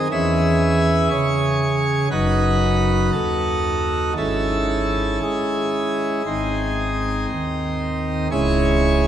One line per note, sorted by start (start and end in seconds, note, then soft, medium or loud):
0.11 1.08 E2 medium
0.11 1.08 E3 medium
0.11 2.08 C#4 soft
0.11 2.08 G#4 medium
0.11 1.08 E5 loud
1.11 2.09 C#3 medium
1.11 2.08 C#5 medium
2.11 3.10 F#1 medium
2.11 3.10 F#2 medium
2.11 4.13 D#4 soft
2.11 4.13 F#4 medium
2.11 3.10 B4 medium
3.13 4.14 D#2 medium
3.13 4.14 A4 medium
4.17 5.19 G#1 medium
4.17 5.19 G#2 medium
4.17 6.22 C#4 soft
4.17 6.22 E4 soft
4.17 5.19 A4 medium
5.22 6.23 G#3 medium
5.22 7.25 G#4 medium
6.26 7.26 G#1 medium
6.26 7.26 G#2 medium
6.26 8.27 C4 soft
6.26 8.27 D#4 soft
7.29 8.28 D#2 soft
8.31 9.07 C#1 medium
8.31 9.07 C#2 medium
8.31 9.07 G#3 soft
8.31 9.07 C#4 medium
8.31 9.07 E4 soft
8.31 9.07 C#5 loud